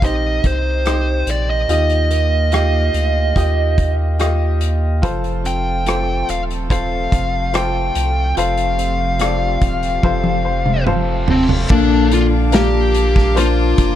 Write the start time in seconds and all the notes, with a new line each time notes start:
Already playing: A#1 C3 D#4 G4 A#4 C5
0.02 C4 D#4 G4 C5 D#5, kick, closed hi-hat
0.44 C2 C5, kick, closed hi-hat
0.85 D#4 G4 C5, cross-stick, closed hi-hat
1.27 A#1, closed hi-hat
1.31 D5
1.50 D#5
1.68 D#2 D#3 F4 G4 D#5, closed hi-hat
1.90 closed hi-hat
2.11 A#3, closed hi-hat
2.52 A#3 D#4 F4 G4 F5, cross-stick, closed hi-hat
2.94 D2, closed hi-hat
3.36 D#2 A#3 D#4 F4 G4 D#5, kick, closed hi-hat
3.78 kick, closed hi-hat
4.19 F4 G4 D#5, cross-stick, closed hi-hat
4.61 closed hi-hat
5.02 F1 C3 F3 A3 F4 A4 C5, kick, closed hi-hat
5.24 closed hi-hat
5.44 C4 G5, closed hi-hat
5.86 C4 F4 A4 C5, cross-stick, closed hi-hat
6.29 D#1 F5, closed hi-hat
6.51 closed hi-hat
6.70 C4 F4 A4 C5 F5, kick, closed hi-hat
7.12 F1, kick, closed hi-hat
7.53 F4 A4 C5 G5, cross-stick, closed hi-hat
7.95 C2, closed hi-hat
8.36 F1 F3 F4 G4 A4 C5 F5, closed hi-hat
8.58 closed hi-hat
8.78 C4, closed hi-hat
9.19 C4 F4 A4 D5, cross-stick, closed hi-hat
9.61 D#1, kick, closed hi-hat
9.83 closed hi-hat
10.03 F1 C4 F4 A4 C5, kick, high tom, reverse cymbal
10.24 high tom
10.45 C5
10.66 mid tom
10.86 F4 A4 C5 F5, mid tom
11.28 C4 A5, floor tom
11.49 floor tom
11.69 A#1 A#2 D3 A#3 D4 F4 A4 F5 A5 D6, kick, crash
12.12 F4, closed hi-hat
12.52 A#3 D4 F4 G4 A#4, snare, closed hi-hat
12.95 closed hi-hat
13.16 kick, snare
13.35 A#3 D4 F4 C5, closed hi-hat
13.78 F1 F3 F4, kick, closed hi-hat